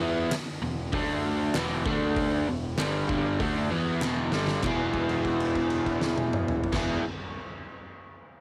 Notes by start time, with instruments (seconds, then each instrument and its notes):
0.00 picked electric bass E2, overdriven electric guitar E3 B3 E4
0.30 muted picked electric bass stroke, muted overdriven electric guitar stroke, snare, clap, open hi-hat
0.62 picked electric bass E1, overdriven electric guitar E2 B2
0.92 picked electric bass D2, overdriven electric guitar D3 A3 D4, kick, open hi-hat
1.55 picked electric bass E1, overdriven electric guitar E2 B2 E3, snare, clap, open hi-hat
1.85 picked electric bass D2, overdriven electric guitar D3 A3 D4, kick
2.16 kick, open hi-hat
2.48 picked electric bass E1, overdriven electric guitar E2 B2
2.78 picked electric bass G1, overdriven electric guitar G2 D3 G3, snare, clap, open hi-hat
3.08 picked electric bass G1, overdriven electric guitar G2 D3 G3, kick
3.39 picked electric bass D2, overdriven electric guitar D3 A3 D4, kick, open hi-hat
3.71 picked electric bass E2, overdriven electric guitar E3 B3 E4
4.01 picked electric bass E1, overdriven electric guitar E2 B2 E3, snare, clap
4.32 picked electric bass G1, overdriven electric guitar G2 D3 G3, snare
4.47 snare
4.62 picked electric bass E1, overdriven electric guitar E3 B3 E4, kick, clap, crash
4.67 overdriven electric guitar G#4
4.93 kick, crash
5.09 crash
5.25 kick, crash
5.40 crash
5.55 kick, crash
5.70 crash
5.86 kick, crash
6.01 snare
6.18 high tom
6.33 mid tom
6.48 mid tom
6.64 floor tom
6.72 picked electric bass E1, overdriven electric guitar E3 B3 E4 G#4, kick, snare, crash